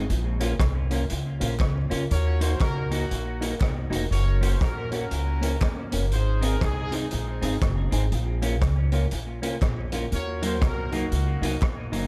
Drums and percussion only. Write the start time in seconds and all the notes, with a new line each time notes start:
0.10 closed hi-hat
0.40 closed hi-hat
0.60 kick, cross-stick, clap, closed hi-hat
0.91 closed hi-hat
1.10 closed hi-hat
1.41 closed hi-hat
1.59 kick, cross-stick, clap, closed hi-hat
1.91 closed hi-hat
2.11 closed hi-hat
2.41 closed hi-hat
2.60 kick, cross-stick, clap, closed hi-hat
2.91 closed hi-hat
3.11 closed hi-hat
3.42 closed hi-hat
3.60 kick, cross-stick, clap, closed hi-hat
3.92 closed hi-hat
4.12 closed hi-hat
4.42 closed hi-hat
4.61 kick, cross-stick, clap, closed hi-hat
4.92 closed hi-hat
5.11 closed hi-hat
5.42 closed hi-hat
5.61 kick, cross-stick, clap, closed hi-hat
5.92 closed hi-hat
6.11 closed hi-hat
6.42 closed hi-hat
6.61 kick, cross-stick, clap, closed hi-hat
6.92 closed hi-hat
7.11 closed hi-hat
7.42 closed hi-hat
7.61 kick, cross-stick, clap, closed hi-hat
7.92 closed hi-hat
8.12 closed hi-hat
8.42 closed hi-hat
8.62 kick, cross-stick, clap, closed hi-hat
8.92 closed hi-hat
9.11 closed hi-hat
9.43 closed hi-hat
9.62 kick, cross-stick, clap, closed hi-hat
9.92 closed hi-hat
10.12 closed hi-hat
10.42 closed hi-hat
10.62 kick, cross-stick, clap, closed hi-hat
10.92 closed hi-hat
11.12 closed hi-hat
11.43 closed hi-hat
11.61 kick, cross-stick, clap, closed hi-hat
11.93 closed hi-hat